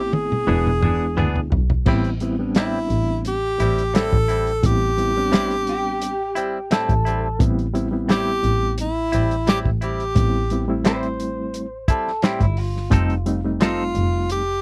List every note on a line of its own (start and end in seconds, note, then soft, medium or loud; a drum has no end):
0.00 0.44 A1 medium
0.00 0.48 A3 medium
0.00 0.46 B3 medium
0.00 0.49 C4 medium
0.00 0.47 E4 medium
0.00 0.15 G4 medium
0.13 1.52 G#4 medium
0.13 high tom medium
0.32 mid tom medium
0.47 0.80 E1 medium
0.47 0.69 E3 medium
0.47 1.59 G#3 medium
0.47 1.59 B3 medium
0.47 0.70 B3 medium
0.47 1.59 D4 medium
0.47 0.70 D4 medium
0.47 1.60 E4 medium
0.47 0.70 G#4 medium
0.67 mid tom medium
0.81 1.13 E2 medium
0.81 1.05 D4 soft
0.81 1.04 G#4 soft
0.81 mid tom medium
0.85 1.06 B3 soft
1.16 1.48 D2 medium
1.16 1.39 E3 medium
1.16 1.39 B3 medium
1.16 1.40 D4 medium
1.16 1.40 G#4 medium
1.16 mid tom medium
1.35 floor tom medium
1.51 1.83 B1 medium
1.51 floor tom medium
1.70 floor tom medium
1.86 2.86 A1 medium
1.86 2.08 A2 medium
1.86 2.11 G3 medium
1.86 2.09 G3 medium
1.86 2.11 B3 medium
1.86 2.11 C4 medium
1.86 2.09 C4 loud
1.86 2.12 E4 medium
1.86 2.09 E4 medium
1.86 kick loud
1.86 crash medium
2.04 closed hi-hat soft
2.20 2.34 G3 medium
2.20 2.34 B3 medium
2.20 2.35 C4 medium
2.20 2.35 E4 medium
2.20 closed hi-hat medium
2.39 3.36 G3 medium
2.39 3.36 B3 medium
2.39 3.36 C4 medium
2.39 3.37 D4 medium
2.55 2.78 A2 medium
2.55 2.78 G3 medium
2.55 2.78 C4 medium
2.55 3.22 E4 medium
2.55 2.79 E4 medium
2.55 snare loud
2.55 closed hi-hat medium
2.89 3.55 A1 medium
2.89 closed hi-hat medium
3.25 3.92 G4 medium
3.25 closed hi-hat medium
3.59 4.08 A1 medium
3.59 3.82 C4 soft
3.59 3.81 E4 soft
3.59 closed hi-hat medium
3.63 3.83 G3 soft
3.78 closed hi-hat soft
3.94 4.16 A2 medium
3.94 4.16 G3 medium
3.94 4.17 C4 medium
3.94 4.17 E4 medium
3.94 4.67 A4 loud
3.94 snare loud
3.94 closed hi-hat medium
4.12 4.60 A1 medium
4.12 kick medium
4.28 4.52 G3 soft
4.28 4.51 C4 soft
4.28 4.50 E4 soft
4.28 closed hi-hat medium
4.47 closed hi-hat soft
4.63 6.85 A1 loud
4.63 4.89 G3 medium
4.63 4.89 B3 medium
4.63 4.89 C4 medium
4.63 4.89 E4 medium
4.63 6.72 G4 loud
4.63 kick loud
4.63 closed hi-hat medium
4.97 5.11 G3 medium
4.97 5.11 B3 medium
4.97 5.11 C4 medium
4.97 5.11 E4 medium
4.97 closed hi-hat medium
5.16 6.13 G3 medium
5.16 6.13 B3 medium
5.16 6.13 C4 medium
5.16 6.13 D4 medium
5.32 5.54 A2 medium
5.32 5.54 G3 medium
5.32 5.54 C4 medium
5.32 5.55 E4 medium
5.32 snare loud
5.32 closed hi-hat medium
5.51 closed hi-hat soft
5.67 6.69 G4 medium
5.67 closed hi-hat medium
6.02 closed hi-hat medium
6.35 6.59 G3 soft
6.35 6.58 C4 medium
6.35 6.57 E4 medium
6.35 closed hi-hat medium
6.71 6.92 A2 medium
6.71 6.93 G3 medium
6.71 6.93 C4 loud
6.71 6.93 E4 medium
6.71 7.39 A4 medium
6.71 snare loud
6.71 closed hi-hat medium
6.89 7.36 A1 medium
6.89 kick medium
6.89 closed hi-hat soft
7.05 7.28 G3 soft
7.05 7.28 C4 soft
7.05 7.27 E4 medium
7.05 closed hi-hat medium
7.39 8.39 A1 medium
7.39 7.65 G3 medium
7.39 7.65 B3 medium
7.39 7.65 C4 medium
7.39 7.66 E4 medium
7.39 kick loud
7.39 closed hi-hat medium
7.59 closed hi-hat soft
7.74 7.87 G3 medium
7.74 7.87 B3 medium
7.74 7.87 C4 medium
7.74 7.87 E4 medium
7.74 closed hi-hat medium
7.91 8.88 G3 medium
7.91 8.88 B3 medium
7.91 8.89 C4 medium
7.91 8.89 E4 medium
8.09 8.30 A2 medium
8.09 8.31 G3 medium
8.09 8.31 C4 medium
8.09 8.31 E4 medium
8.09 8.75 G4 loud
8.09 snare loud
8.09 closed hi-hat medium
8.43 9.08 A1 medium
8.43 closed hi-hat medium
8.78 9.45 E4 medium
8.78 closed hi-hat medium
9.12 9.62 A1 medium
9.12 9.35 G3 soft
9.12 9.35 C4 medium
9.12 9.34 E4 medium
9.12 closed hi-hat medium
9.31 closed hi-hat soft
9.47 9.69 A2 medium
9.47 9.69 G3 medium
9.47 9.69 C4 medium
9.47 9.70 E4 medium
9.47 9.59 G4 medium
9.47 snare loud
9.47 closed hi-hat medium
9.65 10.12 A1 medium
9.65 kick medium
9.81 10.04 G3 soft
9.81 10.03 C4 soft
9.81 10.03 E4 soft
9.81 10.82 G4 medium
9.81 closed hi-hat medium
10.00 closed hi-hat soft
10.16 12.37 A1 loud
10.16 10.41 G3 medium
10.16 10.42 B3 medium
10.16 10.42 C4 medium
10.16 10.42 E4 medium
10.16 kick loud
10.16 closed hi-hat medium
10.50 10.63 G3 medium
10.50 10.63 B3 medium
10.50 10.64 C4 medium
10.50 10.64 E4 medium
10.50 closed hi-hat medium
10.68 11.64 G3 medium
10.68 11.65 A3 medium
10.68 11.65 C4 medium
10.68 11.65 E4 medium
10.85 11.06 A2 medium
10.85 11.07 G3 medium
10.85 11.07 C4 medium
10.85 11.07 E4 medium
10.85 11.86 C5 medium
10.85 snare loud
10.85 closed hi-hat medium
11.03 closed hi-hat soft
11.20 closed hi-hat medium
11.54 closed hi-hat medium
11.88 12.11 G3 soft
11.88 12.11 C4 soft
11.88 12.10 E4 medium
11.88 12.23 A4 medium
11.88 kick medium
11.88 closed hi-hat medium
12.08 snare soft
12.22 12.44 A2 medium
12.22 12.45 G3 medium
12.22 12.45 C4 medium
12.22 12.45 E4 medium
12.22 12.41 G4 medium
12.22 snare loud
12.22 closed hi-hat medium
12.40 12.88 G1 medium
12.40 12.58 E4 medium
12.40 kick medium
12.40 closed hi-hat soft
12.57 13.42 F4 medium
12.57 open hi-hat medium
12.77 snare soft
12.90 13.91 F1 medium
12.90 13.13 F3 medium
12.90 13.16 G3 medium
12.90 13.16 A3 medium
12.90 13.16 C4 medium
12.90 13.14 C4 medium
12.90 13.17 D#4 medium
12.90 13.14 D#4 medium
12.90 13.14 A4 loud
12.90 kick loud
12.90 closed hi-hat medium
13.10 closed hi-hat soft
13.26 13.39 G3 medium
13.26 13.39 A3 medium
13.26 13.39 C4 medium
13.26 13.40 D#4 medium
13.26 closed hi-hat medium
13.44 14.41 G3 medium
13.44 14.41 A3 medium
13.44 14.41 C4 medium
13.44 14.41 D#4 medium
13.61 13.82 F3 medium
13.61 13.83 C4 medium
13.61 13.83 D#4 medium
13.61 14.27 F4 medium
13.61 13.83 A4 medium
13.61 snare loud
13.61 closed hi-hat medium
13.95 14.60 F1 medium
13.95 closed hi-hat medium
14.30 14.62 G4 medium
14.30 closed hi-hat medium